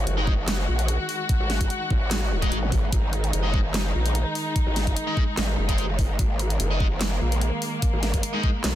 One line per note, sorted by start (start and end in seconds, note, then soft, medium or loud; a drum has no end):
0.00 8.75 D#3 medium
0.00 8.75 G#3 medium
0.00 2.91 F#4 medium
0.07 0.67 F#1 loud
0.07 closed hi-hat medium
0.18 0.33 G#3 medium
0.18 0.33 D#4 medium
0.18 0.33 D#5 loud
0.27 kick loud
0.48 snare loud
0.48 clap medium
0.48 closed hi-hat medium
0.68 0.98 A#1 loud
0.79 closed hi-hat soft
0.88 closed hi-hat medium
1.09 open hi-hat medium
1.29 kick loud
1.29 closed hi-hat medium
1.40 1.59 G#1 loud
1.50 snare medium
1.50 closed hi-hat soft
1.61 1.69 G#1 loud
1.61 kick medium
1.61 closed hi-hat medium
1.70 closed hi-hat medium
1.91 2.50 G#1 loud
1.91 kick loud
2.11 snare loud
2.11 clap medium
2.11 closed hi-hat medium
2.42 2.58 G#3 medium
2.42 2.58 D#4 medium
2.42 2.58 D#5 medium
2.42 kick medium
2.42 closed hi-hat soft
2.52 2.71 G#1 medium
2.52 closed hi-hat medium
2.63 zap medium
2.72 2.91 G#1 loud
2.72 kick loud
2.72 open hi-hat medium
2.92 3.32 G#1 medium
2.92 6.18 D#4 medium
2.92 kick loud
2.92 closed hi-hat medium
3.13 closed hi-hat soft
3.24 closed hi-hat medium
3.33 3.93 F#1 loud
3.33 closed hi-hat medium
3.44 3.60 G#3 medium
3.44 3.60 D#4 medium
3.44 3.60 D#5 loud
3.54 kick loud
3.74 snare loud
3.74 clap medium
3.74 closed hi-hat medium
3.95 4.24 A#1 medium
4.06 closed hi-hat soft
4.15 closed hi-hat medium
4.35 open hi-hat medium
4.56 kick loud
4.56 closed hi-hat medium
4.67 4.85 G#1 loud
4.76 snare medium
4.76 closed hi-hat medium
4.87 4.95 G#1 loud
4.87 kick medium
4.87 closed hi-hat medium
4.97 closed hi-hat medium
5.07 5.23 G#3 medium
5.07 5.23 D#4 medium
5.07 5.23 D#5 loud
5.17 kick loud
5.37 5.56 G#1 medium
5.37 snare loud
5.37 clap medium
5.37 closed hi-hat medium
5.58 6.17 F#1 medium
5.69 5.84 G#3 medium
5.69 5.84 D#4 medium
5.69 5.84 D#5 medium
5.69 kick medium
5.69 closed hi-hat medium
5.78 closed hi-hat medium
5.99 kick loud
5.99 open hi-hat loud
6.19 6.58 G#1 loud
6.19 8.75 A#3 medium
6.19 kick loud
6.19 closed hi-hat medium
6.39 closed hi-hat medium
6.50 closed hi-hat medium
6.60 7.20 F#1 loud
6.60 closed hi-hat medium
6.71 6.86 G#3 medium
6.71 6.86 D#4 medium
6.71 6.86 D#5 loud
6.80 kick loud
7.01 snare loud
7.01 clap medium
7.01 closed hi-hat medium
7.21 7.51 A#1 medium
7.32 closed hi-hat medium
7.41 closed hi-hat medium
7.62 open hi-hat loud
7.82 kick loud
7.82 closed hi-hat medium
7.93 8.12 G#1 loud
8.03 snare medium
8.03 closed hi-hat medium
8.14 8.22 G#1 loud
8.14 kick medium
8.14 closed hi-hat medium
8.23 closed hi-hat medium
8.34 8.49 G#3 medium
8.34 8.49 D#4 medium
8.34 8.50 D#5 loud
8.44 kick loud
8.64 8.75 B1 loud
8.64 snare loud
8.64 clap medium
8.64 closed hi-hat medium